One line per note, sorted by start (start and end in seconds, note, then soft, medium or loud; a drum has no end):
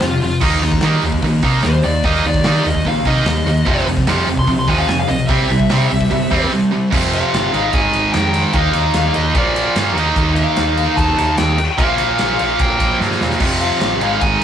0.00 0.17 F1 medium
0.00 0.20 F2 medium
0.00 0.21 C3 loud
0.00 0.21 F4 loud
0.00 snare loud
0.00 open hi-hat medium
0.22 0.38 F1 loud
0.22 0.41 F2 medium
0.22 0.41 C3 medium
0.22 0.42 F4 loud
0.22 open hi-hat medium
0.41 0.57 D#2 loud
0.41 0.62 D#3 medium
0.41 0.62 A#3 medium
0.41 0.83 D#4 loud
0.41 0.62 D#4 medium
0.41 kick loud
0.41 crash loud
0.53 snare soft
0.61 0.77 D#2 medium
0.61 0.81 D#3 medium
0.61 0.81 A#3 medium
0.61 open hi-hat medium
0.71 kick medium
0.71 snare soft
0.80 0.97 D#3 loud
0.80 1.02 D#3 medium
0.80 1.02 A#3 medium
0.80 1.03 D#4 loud
0.80 snare loud
0.80 open hi-hat medium
1.02 1.18 D#2 loud
1.02 1.21 D#3 medium
1.02 1.21 A#3 medium
1.02 open hi-hat medium
1.12 kick medium
1.22 1.38 A#1 medium
1.22 1.42 D#3 medium
1.22 1.42 A#3 medium
1.22 kick medium
1.22 open hi-hat medium
1.42 1.59 C3 medium
1.42 1.63 D#3 loud
1.42 1.64 A#3 loud
1.42 1.63 D#4 loud
1.42 kick medium
1.42 open hi-hat medium
1.62 1.79 D#2 loud
1.62 1.83 D#3 medium
1.62 1.83 A#3 medium
1.62 1.84 C5 loud
1.62 snare loud
1.62 open hi-hat medium
1.82 2.00 D#2 loud
1.82 2.04 D#3 medium
1.82 2.03 A#3 medium
1.82 2.04 D5 loud
1.82 open hi-hat medium
2.03 2.20 D#2 loud
2.03 2.24 D#3 medium
2.03 2.24 A#3 medium
2.03 2.25 D#4 medium
2.03 2.25 D#5 loud
2.03 kick loud
2.03 open hi-hat medium
2.15 snare soft
2.24 2.40 D#2 medium
2.24 2.44 D#3 medium
2.24 2.45 A#3 medium
2.24 2.66 D5 medium
2.24 open hi-hat medium
2.34 kick medium
2.34 snare soft
2.44 2.60 D#3 medium
2.44 2.65 D#3 medium
2.44 2.65 A#3 medium
2.44 2.66 D#4 loud
2.44 snare loud
2.44 open hi-hat medium
2.65 2.81 D#2 loud
2.65 2.85 D#3 medium
2.65 2.85 A#3 medium
2.65 2.86 D#5 loud
2.65 open hi-hat medium
2.75 kick medium
2.85 3.00 A#1 medium
2.85 3.06 D#3 medium
2.85 3.05 A#3 medium
2.85 3.07 F5 medium
2.85 kick medium
2.85 open hi-hat medium
3.05 3.21 C3 medium
3.05 3.26 D#3 medium
3.05 3.26 A#3 loud
3.05 3.27 D#4 loud
3.05 3.86 D#5 loud
3.05 kick medium
3.05 open hi-hat medium
3.25 3.41 D#2 loud
3.25 3.45 D#3 medium
3.25 3.46 A#3 loud
3.25 snare loud
3.25 open hi-hat medium
3.46 3.61 D#2 loud
3.46 3.66 D#3 medium
3.46 3.66 A#3 medium
3.46 open hi-hat medium
3.67 3.82 F1 loud
3.67 3.86 F2 medium
3.67 3.87 C3 medium
3.67 3.87 F3 medium
3.67 kick loud
3.67 open hi-hat medium
3.78 snare soft
3.86 4.02 F1 medium
3.86 4.06 F2 medium
3.86 4.07 C3 medium
3.86 open hi-hat medium
3.97 kick medium
3.97 snare soft
4.07 4.22 F2 loud
4.07 4.25 F2 medium
4.07 4.26 C3 loud
4.07 4.27 F3 loud
4.07 snare loud
4.07 open hi-hat medium
4.27 4.42 F1 medium
4.27 4.46 F2 medium
4.27 4.46 C3 medium
4.27 open hi-hat medium
4.37 4.49 C6 loud
4.37 kick medium
4.47 4.63 C2 medium
4.47 4.67 F2 medium
4.47 4.67 C3 medium
4.47 kick medium
4.47 open hi-hat medium
4.59 4.69 C6 medium
4.68 4.83 D#2 medium
4.68 4.87 F2 medium
4.68 4.88 C3 loud
4.68 4.89 F3 loud
4.68 4.78 G#5 medium
4.68 kick medium
4.68 open hi-hat medium
4.79 4.87 F5 loud
4.87 5.04 F1 medium
4.87 5.07 F2 medium
4.87 5.07 C3 loud
4.87 4.98 G#5 loud
4.87 snare loud
4.87 open hi-hat medium
4.99 5.08 F5 loud
5.08 5.25 B1 loud
5.08 5.28 F2 medium
5.08 5.28 C3 medium
5.08 5.27 D#5 loud
5.08 open hi-hat medium
5.27 5.44 C2 loud
5.27 5.49 C3 medium
5.27 5.49 G3 medium
5.27 5.49 C4 medium
5.27 6.47 E5 loud
5.27 kick loud
5.27 open hi-hat medium
5.49 5.65 C2 loud
5.49 5.68 C3 medium
5.49 5.68 G3 medium
5.49 open hi-hat medium
5.59 kick medium
5.69 5.89 C3 loud
5.69 5.86 C3 loud
5.69 5.89 G3 loud
5.69 5.90 C4 loud
5.69 snare loud
5.69 open hi-hat medium
5.90 6.06 C2 loud
5.90 6.09 C3 medium
5.90 6.09 G3 medium
5.90 open hi-hat medium
6.01 kick medium
6.11 6.26 G1 loud
6.11 6.29 C3 medium
6.11 6.29 G3 medium
6.11 kick medium
6.11 open hi-hat medium
6.30 6.46 E2 medium
6.30 6.50 C3 medium
6.30 6.50 G3 loud
6.30 6.50 C4 loud
6.30 kick medium
6.30 open hi-hat medium
6.52 6.70 C3 medium
6.52 6.70 G3 medium
6.73 6.91 C3 medium
6.73 6.91 G3 medium
6.92 7.21 F1 loud
6.92 7.52 F2 medium
6.92 7.53 C3 medium
6.92 7.53 F3 medium
6.92 kick loud
6.92 crash loud
7.13 7.70 F5 loud
7.13 ride medium
7.33 7.48 G1 medium
7.33 snare loud
7.33 ride loud
7.53 7.68 G#1 loud
7.53 8.54 G#2 medium
7.53 8.52 D#3 medium
7.53 8.55 G#3 loud
7.53 ride medium
7.73 7.87 G#1 medium
7.73 8.12 G#5 loud
7.73 kick loud
7.73 ride loud
7.93 8.08 G#1 medium
7.93 ride medium
8.13 8.43 F2 medium
8.13 8.55 G5 loud
8.13 snare loud
8.13 ride loud
8.34 ride medium
8.53 8.68 D#2 loud
8.53 9.34 D#3 medium
8.53 9.36 A#3 medium
8.53 9.35 D#4 medium
8.53 9.15 F5 loud
8.53 kick loud
8.53 ride loud
8.73 8.89 D#2 medium
8.73 ride medium
8.94 9.09 D#2 medium
8.94 snare loud
8.94 ride loud
9.14 9.30 D#2 medium
9.14 9.34 D#5 medium
9.14 ride medium
9.35 9.64 A#1 medium
9.35 9.94 A#2 medium
9.35 9.95 F3 loud
9.35 9.97 A#3 loud
9.35 9.73 D5 medium
9.35 kick loud
9.35 ride loud
9.56 ride medium
9.76 9.95 G2 loud
9.76 snare loud
9.76 ride loud
9.95 10.10 D#2 loud
9.95 10.95 D#3 medium
9.95 10.97 A#3 medium
9.95 10.97 D#4 loud
9.95 ride medium
10.16 10.45 D#2 loud
10.16 kick loud
10.16 ride medium
10.35 10.99 F5 loud
10.35 ride medium
10.56 10.86 D#2 medium
10.56 snare loud
10.56 ride loud
10.77 ride medium
10.96 11.12 D#2 loud
10.96 11.16 D#3 medium
10.96 11.16 A#3 medium
10.96 11.16 D#4 medium
10.96 11.34 A5 loud
10.96 kick loud
10.96 ride loud
11.17 11.32 D#2 medium
11.17 11.58 D#3 medium
11.17 11.57 A#3 medium
11.17 11.57 D#4 medium
11.17 ride medium
11.37 11.68 D#2 loud
11.37 11.80 G5 loud
11.37 snare loud
11.37 ride loud
11.58 ride medium
11.77 11.93 A#1 loud
11.77 12.78 A#2 medium
11.77 12.79 F3 medium
11.77 12.79 A#3 medium
11.77 12.40 F5 medium
11.77 kick loud
11.77 ride loud
11.98 12.14 A#1 medium
11.98 ride medium
12.19 12.34 A#1 medium
12.19 snare loud
12.19 ride loud
12.39 12.54 A#1 medium
12.39 12.61 F5 medium
12.39 ride medium
12.59 12.89 A#1 medium
12.59 12.98 G5 medium
12.59 kick loud
12.59 ride medium
12.80 12.98 A#2 medium
12.80 13.00 F3 medium
12.80 12.99 A#3 medium
12.80 kick medium
12.80 ride medium
13.00 13.15 G2 medium
13.00 13.39 A#2 medium
13.00 13.40 F3 medium
13.00 13.40 A#3 loud
13.00 snare medium
13.11 snare medium
13.21 13.35 E1 medium
13.21 snare loud
13.30 snare medium
13.40 13.69 F1 medium
13.40 14.00 F2 medium
13.40 14.01 C3 medium
13.40 14.01 F3 medium
13.40 kick loud
13.40 crash loud
13.61 14.23 F5 medium
13.61 ride medium
13.81 13.96 A1 medium
13.81 snare loud
13.81 ride medium
14.01 14.15 G#1 loud
14.01 14.44 G#2 medium
14.01 14.44 D#3 medium
14.01 14.44 G#3 loud
14.01 ride medium
14.21 14.36 G#1 medium
14.21 14.44 G#5 loud
14.21 kick loud
14.21 ride medium